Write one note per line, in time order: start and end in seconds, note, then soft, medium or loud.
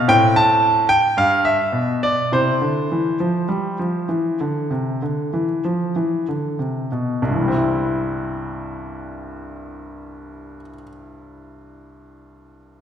0.00 0.11 F5 loud
0.08 0.85 A2 medium
0.08 1.11 C4 soft
0.08 0.35 G5 loud
0.36 0.81 A5 medium
0.89 1.16 G5 medium
1.17 1.57 G2 medium
1.17 1.44 F5 medium
1.45 2.01 E5 medium
1.72 2.13 B2 soft
2.03 2.30 D5 medium
2.32 2.58 C3 medium
2.32 7.21 E4 soft
2.32 5.43 C5 medium
2.61 2.88 D3 soft
2.92 3.18 E3 soft
3.20 3.47 F3 soft
3.49 3.77 G3 soft
3.79 4.08 F3 soft
4.09 4.38 E3 soft
4.41 4.70 D3 soft
4.71 5.00 C3 soft
5.02 5.32 D3 soft
5.34 5.63 E3 soft
5.65 5.94 F3 soft
5.96 6.26 E3 soft
6.29 6.58 D3 soft
6.59 6.90 C3 soft
6.92 7.22 B2 soft
7.22 10.55 C2 soft
7.29 10.62 G2 soft
7.35 10.68 E3 soft
7.42 10.75 G3 soft
7.48 10.81 C4 soft
7.55 10.88 E4 soft